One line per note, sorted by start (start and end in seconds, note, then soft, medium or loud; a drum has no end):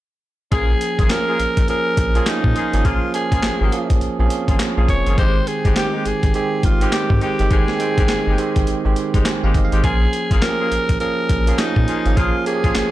0.52 0.74 A#1 loud
0.52 1.06 F3 medium
0.52 0.70 A#3 loud
0.52 1.06 A#3 medium
0.52 0.70 C#4 medium
0.52 1.06 C#4 medium
0.52 0.70 F4 medium
0.52 0.70 G#4 loud
0.52 1.06 G#4 medium
0.52 1.13 G#4 loud
0.52 kick loud
0.52 closed hi-hat medium
0.81 closed hi-hat medium
0.98 1.08 G#1 medium
0.98 1.11 A#3 medium
0.98 1.11 C#4 medium
0.98 1.11 F4 medium
0.98 1.11 G#4 medium
0.98 kick medium
0.98 closed hi-hat medium
1.10 1.64 F3 medium
1.10 1.64 A#3 medium
1.10 1.64 C#4 medium
1.10 1.65 G#4 medium
1.10 1.69 A#4 loud
1.10 snare loud
1.10 clap medium
1.10 closed hi-hat medium
1.28 1.40 A#3 medium
1.28 1.40 C#4 medium
1.28 1.40 F4 medium
1.28 1.40 G#4 medium
1.39 1.46 A#1 soft
1.39 closed hi-hat medium
1.57 1.66 A#1 medium
1.57 kick medium
1.57 closed hi-hat medium
1.68 2.10 F3 medium
1.68 2.10 A#3 medium
1.68 2.11 C#4 medium
1.68 2.11 G#4 medium
1.68 2.29 A#4 loud
1.68 closed hi-hat medium
1.97 2.20 A#1 medium
1.97 kick medium
1.97 closed hi-hat medium
2.15 2.67 F3 medium
2.15 2.27 A#3 medium
2.15 2.67 A#3 medium
2.15 2.28 C#4 medium
2.15 2.67 C#4 medium
2.15 2.28 F4 medium
2.15 2.28 G#4 medium
2.15 2.67 G#4 medium
2.15 closed hi-hat medium
2.26 2.88 D#4 medium
2.26 snare loud
2.26 clap medium
2.26 closed hi-hat medium
2.44 2.53 A#2 medium
2.44 kick medium
2.55 2.74 A#3 medium
2.55 2.74 C#4 medium
2.55 2.74 F4 medium
2.55 2.74 G#4 medium
2.55 closed hi-hat medium
2.73 2.82 G#1 medium
2.73 3.11 F3 medium
2.73 3.11 A#3 medium
2.73 3.11 C#4 medium
2.73 3.11 G#4 medium
2.73 closed hi-hat medium
2.84 2.99 A#1 loud
2.84 3.03 A#3 medium
2.84 3.03 C#4 medium
2.84 3.03 F4 medium
2.84 3.15 F4 medium
2.84 3.03 G#4 loud
2.84 kick loud
2.84 closed hi-hat medium
3.14 3.68 F3 medium
3.14 3.68 A#3 medium
3.14 3.68 C#4 medium
3.14 3.68 G#4 medium
3.14 3.98 G#4 medium
3.14 closed hi-hat medium
3.31 3.41 A#1 medium
3.31 3.44 A#3 medium
3.31 3.44 C#4 medium
3.31 3.44 F4 medium
3.31 3.44 G#4 medium
3.31 kick medium
3.31 closed hi-hat medium
3.43 3.50 G#1 medium
3.43 snare loud
3.43 clap medium
3.43 closed hi-hat medium
3.60 3.70 G#1 medium
3.60 3.73 A#3 medium
3.60 3.73 C#4 medium
3.60 3.73 F4 medium
3.60 3.73 G#4 medium
3.72 4.14 F3 medium
3.72 4.14 A#3 medium
3.72 4.14 C#4 medium
3.72 4.15 G#4 medium
3.72 closed hi-hat medium
3.90 3.99 A#1 medium
3.90 kick medium
3.90 closed hi-hat medium
4.01 4.09 A#1 soft
4.01 closed hi-hat medium
4.19 4.28 A#1 medium
4.19 4.70 F3 medium
4.19 4.71 A#3 medium
4.19 4.25 C4 medium
4.19 4.71 G#4 medium
4.26 4.74 C#4 medium
4.30 closed hi-hat medium
4.48 4.57 G#1 medium
4.48 4.60 A#3 medium
4.48 4.61 C#4 medium
4.48 4.61 F4 medium
4.48 4.61 G#4 medium
4.48 kick medium
4.48 closed hi-hat medium
4.59 snare loud
4.59 clap medium
4.59 closed hi-hat medium
4.77 4.86 A#1 medium
4.77 5.15 F3 medium
4.77 4.90 A#3 medium
4.77 5.15 A#3 medium
4.77 4.90 C#4 medium
4.77 5.15 C#4 medium
4.77 4.90 F4 medium
4.77 4.90 G#4 medium
4.77 5.15 G#4 medium
4.88 5.02 F1 loud
4.88 5.16 C#5 medium
4.88 kick medium
4.88 closed hi-hat medium
5.06 5.15 G1 medium
5.06 5.19 A#3 medium
5.06 5.19 C#4 medium
5.06 5.19 F4 medium
5.06 5.19 G#4 medium
5.06 closed hi-hat medium
5.18 5.40 G#1 loud
5.18 5.72 D#3 medium
5.18 5.36 G#3 loud
5.18 5.72 G#3 medium
5.18 5.36 C4 medium
5.18 5.72 C4 medium
5.18 5.36 D#4 medium
5.18 5.36 G4 loud
5.18 5.72 G4 medium
5.18 5.49 C5 loud
5.18 kick loud
5.18 closed hi-hat medium
5.47 5.77 G#4 medium
5.47 closed hi-hat medium
5.64 5.74 G1 medium
5.64 5.77 G#3 medium
5.64 5.77 C4 medium
5.64 5.77 D#4 medium
5.64 5.77 G4 medium
5.64 kick medium
5.64 closed hi-hat medium
5.76 6.30 D#3 medium
5.76 6.30 G#3 medium
5.76 6.30 C4 medium
5.76 6.08 G4 medium
5.76 6.31 G4 medium
5.76 snare loud
5.76 clap medium
5.76 closed hi-hat medium
5.94 6.06 G#3 medium
5.94 6.06 C4 medium
5.94 6.06 D#4 medium
5.94 6.06 G4 medium
6.05 6.13 G#1 soft
6.05 6.35 G#4 medium
6.05 closed hi-hat medium
6.23 6.32 G#1 medium
6.23 kick medium
6.23 closed hi-hat medium
6.34 6.76 D#3 medium
6.34 6.76 G#3 medium
6.34 6.77 C4 medium
6.34 6.77 G4 medium
6.34 6.66 G#4 medium
6.34 closed hi-hat medium
6.63 6.86 G#1 medium
6.63 6.93 F4 medium
6.63 kick medium
6.63 closed hi-hat medium
6.81 7.33 D#3 medium
6.81 6.93 G#3 medium
6.81 7.33 G#3 medium
6.81 6.93 C4 medium
6.81 7.33 C4 medium
6.81 6.94 D#4 medium
6.81 6.94 G4 medium
6.81 7.33 G4 medium
6.81 closed hi-hat medium
6.92 7.20 G4 medium
6.92 snare loud
6.92 clap medium
6.92 closed hi-hat medium
7.10 7.19 G#2 loud
7.10 kick medium
7.21 7.40 G#3 medium
7.21 7.40 C4 medium
7.21 7.40 D#4 medium
7.21 7.40 G4 medium
7.21 7.54 G4 medium
7.21 closed hi-hat medium
7.39 7.48 G1 medium
7.39 7.77 D#3 medium
7.39 7.77 G#3 medium
7.39 7.77 C4 medium
7.39 7.77 G4 loud
7.39 closed hi-hat medium
7.51 7.65 G#1 loud
7.51 7.69 G#3 medium
7.51 7.69 C4 medium
7.51 7.69 D#4 medium
7.51 7.69 G4 loud
7.51 8.68 G#4 medium
7.51 kick loud
7.51 closed hi-hat medium
7.68 snare medium
7.80 8.34 D#3 medium
7.80 8.34 G#3 medium
7.80 8.34 C4 medium
7.80 8.34 G5 loud
7.80 closed hi-hat medium
7.98 8.07 G#1 medium
7.98 8.10 G#3 medium
7.98 8.10 C4 medium
7.98 8.10 D#4 medium
7.98 8.10 G4 medium
7.98 kick loud
7.98 closed hi-hat medium
8.09 8.16 G1 medium
8.09 snare loud
8.09 clap medium
8.09 closed hi-hat medium
8.27 8.36 G1 medium
8.27 8.39 G#3 medium
8.27 8.39 C4 medium
8.27 8.39 D#4 medium
8.27 8.39 G4 medium
8.38 8.80 D#3 medium
8.38 8.80 G#3 medium
8.38 8.80 C4 medium
8.38 8.81 G4 medium
8.38 closed hi-hat medium
8.56 8.65 G#1 medium
8.56 kick medium
8.56 closed hi-hat medium
8.67 8.75 G#1 soft
8.67 closed hi-hat medium
8.85 8.94 G#1 medium
8.85 9.36 D#3 medium
8.85 9.37 G#3 medium
8.85 9.37 C4 medium
8.85 9.37 G4 medium
8.96 closed hi-hat medium
9.14 9.23 G1 medium
9.14 9.26 G#3 medium
9.14 9.27 C4 medium
9.14 9.27 D#4 medium
9.14 9.27 G4 medium
9.14 kick medium
9.14 closed hi-hat medium
9.25 9.43 C5 medium
9.25 9.62 G#5 medium
9.25 snare loud
9.25 clap medium
9.25 closed hi-hat medium
9.43 9.52 G#1 medium
9.43 9.56 G#3 medium
9.43 9.56 C4 medium
9.43 9.56 D#4 medium
9.43 9.56 G4 medium
9.43 9.54 F5 medium
9.54 9.68 G1 medium
9.54 9.72 D#5 medium
9.54 kick medium
9.54 closed hi-hat medium
9.65 9.83 F5 medium
9.72 9.81 G#1 medium
9.72 9.85 G#3 medium
9.72 9.85 C4 medium
9.72 9.85 D#4 medium
9.72 9.85 G4 medium
9.72 10.00 C5 medium
9.72 closed hi-hat soft
9.84 10.06 A#1 loud
9.84 10.38 F3 medium
9.84 10.02 A#3 medium
9.84 10.38 A#3 medium
9.84 10.02 C#4 medium
9.84 10.38 C#4 medium
9.84 10.02 F4 medium
9.84 10.02 G#4 loud
9.84 10.44 G#4 loud
9.84 10.38 G#4 medium
9.84 kick loud
9.84 closed hi-hat medium
10.13 closed hi-hat medium
10.31 10.40 G#1 loud
10.31 10.43 A#3 medium
10.31 10.43 C#4 medium
10.31 10.43 F4 medium
10.31 10.43 G#4 medium
10.31 kick medium
10.31 closed hi-hat medium
10.42 10.96 F3 medium
10.42 10.96 A#3 medium
10.42 10.96 C#4 medium
10.42 10.51 G4 medium
10.42 11.00 A#4 loud
10.42 snare loud
10.42 clap medium
10.42 closed hi-hat medium
10.50 11.00 G#4 medium
10.60 10.72 A#3 medium
10.60 10.72 C#4 medium
10.60 10.72 F4 medium
10.60 10.72 G#4 medium
10.71 10.78 A#1 soft
10.71 closed hi-hat medium
10.89 10.98 A#1 medium
10.89 kick medium
10.89 closed hi-hat medium
11.00 11.42 F3 medium
11.00 11.42 A#3 medium
11.00 11.43 C#4 medium
11.00 11.43 G#4 medium
11.00 11.61 A#4 medium
11.00 closed hi-hat medium
11.29 11.52 A#1 medium
11.29 kick medium
11.29 closed hi-hat medium
11.47 11.99 F3 medium
11.47 11.60 A#3 medium
11.47 11.99 A#3 medium
11.47 11.60 C#4 medium
11.47 11.99 C#4 medium
11.47 11.60 F4 medium
11.47 11.60 G#4 medium
11.47 11.99 G#4 medium
11.47 closed hi-hat medium
11.59 12.19 D#4 medium
11.59 snare loud
11.59 clap medium
11.59 closed hi-hat medium
11.76 11.85 A#2 medium
11.76 kick medium
11.88 12.06 A#3 medium
11.88 12.06 C#4 medium
11.88 12.06 F4 medium
11.88 12.06 G#4 medium
11.88 closed hi-hat medium
12.06 12.14 G#1 medium
12.06 12.43 F3 medium
12.06 12.43 A#3 medium
12.06 12.43 C#4 medium
12.06 12.44 G#4 medium
12.06 closed hi-hat medium
12.17 12.31 A#1 loud
12.17 12.35 A#3 medium
12.17 12.35 C#4 medium
12.17 12.35 F4 medium
12.17 12.46 F4 medium
12.17 12.36 G#4 loud
12.17 kick loud
12.17 closed hi-hat medium
12.46 12.91 F3 medium
12.46 12.91 A#3 medium
12.46 12.91 C#4 medium
12.46 12.55 G4 medium
12.46 12.91 G#4 medium
12.46 closed hi-hat medium
12.54 12.91 G#4 medium
12.64 12.73 A#1 medium
12.64 12.76 A#3 medium
12.64 12.76 C#4 medium
12.64 12.76 F4 medium
12.64 12.76 G#4 medium
12.64 kick medium
12.64 closed hi-hat soft
12.75 12.82 G#1 medium
12.75 snare loud
12.75 clap medium
12.75 closed hi-hat medium